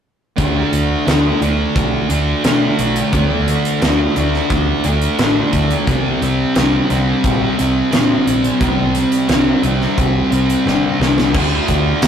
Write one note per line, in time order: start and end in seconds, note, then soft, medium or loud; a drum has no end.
0.37 0.60 D2 medium
0.37 1.06 D3 medium
0.37 1.08 A3 medium
0.37 1.08 D4 loud
0.37 kick loud
0.37 closed hi-hat medium
0.72 0.94 D2 medium
0.72 closed hi-hat medium
1.06 1.29 D2 medium
1.06 2.44 D3 medium
1.06 1.44 A3 medium
1.06 1.41 D4 medium
1.06 snare loud
1.06 closed hi-hat medium
1.41 1.63 D2 medium
1.41 2.10 A3 medium
1.41 2.08 D4 medium
1.41 closed hi-hat medium
1.76 1.98 B1 medium
1.76 kick loud
1.76 closed hi-hat medium
2.09 2.31 D2 medium
2.09 2.44 A3 medium
2.09 2.46 D4 medium
2.09 closed hi-hat medium
2.44 2.66 B2 medium
2.44 3.11 D3 medium
2.44 3.12 A3 medium
2.44 3.14 D4 medium
2.44 snare loud
2.44 closed hi-hat medium
2.79 3.01 B1 medium
2.79 closed hi-hat medium
2.96 closed hi-hat medium
3.12 3.56 D2 medium
3.12 3.80 D3 medium
3.12 3.82 A3 loud
3.12 3.83 D4 loud
3.12 kick loud
3.12 closed hi-hat medium
3.48 closed hi-hat medium
3.65 closed hi-hat medium
3.81 4.04 D2 medium
3.81 4.50 D3 medium
3.81 4.18 A3 medium
3.81 4.15 D4 medium
3.81 snare loud
3.81 closed hi-hat medium
4.16 4.38 D2 medium
4.16 4.87 A3 medium
4.16 4.84 D4 medium
4.16 closed hi-hat medium
4.34 snare soft
4.50 4.72 D2 medium
4.50 kick loud
4.50 closed hi-hat medium
4.84 5.06 D2 medium
4.84 5.21 D4 medium
4.84 closed hi-hat medium
4.88 5.19 A3 medium
5.02 closed hi-hat medium
5.19 5.41 A1 medium
5.19 5.85 D3 medium
5.19 5.86 A3 medium
5.19 5.87 D4 medium
5.19 snare loud
5.19 closed hi-hat medium
5.53 5.74 D2 medium
5.53 kick medium
5.53 closed hi-hat medium
5.71 closed hi-hat medium
5.87 6.09 C2 medium
5.87 6.55 C3 medium
5.87 6.56 G3 medium
5.87 6.58 C4 loud
5.87 kick loud
5.87 closed hi-hat medium
6.22 6.43 C2 medium
6.22 closed hi-hat medium
6.55 6.78 C2 loud
6.55 7.91 C3 medium
6.55 6.92 G3 medium
6.55 6.89 C4 medium
6.55 snare loud
6.55 closed hi-hat medium
6.90 7.12 C2 medium
6.90 7.60 G3 medium
6.90 7.56 C4 medium
6.90 closed hi-hat medium
7.24 7.46 A#1 loud
7.24 kick loud
7.24 closed hi-hat medium
7.58 7.81 C2 medium
7.58 7.92 G3 medium
7.58 7.93 C4 medium
7.58 closed hi-hat medium
7.91 8.14 A#2 medium
7.91 8.59 C3 medium
7.91 8.60 G3 medium
7.91 8.61 C4 medium
7.91 snare loud
7.91 closed hi-hat medium
8.27 8.49 A#1 medium
8.27 closed hi-hat medium
8.44 closed hi-hat medium
8.60 9.04 C2 medium
8.60 9.27 C3 medium
8.60 9.29 G3 medium
8.60 9.30 C4 loud
8.60 kick loud
8.60 closed hi-hat medium
8.95 closed hi-hat medium
9.12 closed hi-hat medium
9.29 9.51 C2 medium
9.29 9.98 C3 medium
9.29 9.65 G3 medium
9.29 9.62 C4 medium
9.29 snare medium
9.29 closed hi-hat medium
9.63 9.85 C2 medium
9.63 10.32 G3 medium
9.63 10.30 C4 medium
9.63 closed hi-hat medium
9.81 snare soft
9.98 10.20 C2 medium
9.98 kick loud
9.98 closed hi-hat medium
10.31 10.54 C2 medium
10.31 10.65 G3 soft
10.31 10.67 C4 medium
10.31 closed hi-hat medium
10.50 closed hi-hat medium
10.65 10.88 G1 medium
10.65 11.32 C3 medium
10.65 11.33 G3 medium
10.65 11.34 C4 medium
10.65 snare medium
11.00 11.34 C2 medium
11.00 snare medium
11.18 snare medium
11.33 11.58 D2 medium
11.33 12.07 D3 medium
11.33 12.07 A3 loud
11.33 12.07 D4 loud
11.33 kick loud
11.33 crash loud
11.68 11.92 D2 loud
11.68 kick medium
11.68 closed hi-hat medium
12.02 12.07 D2 loud
12.02 snare loud
12.02 closed hi-hat medium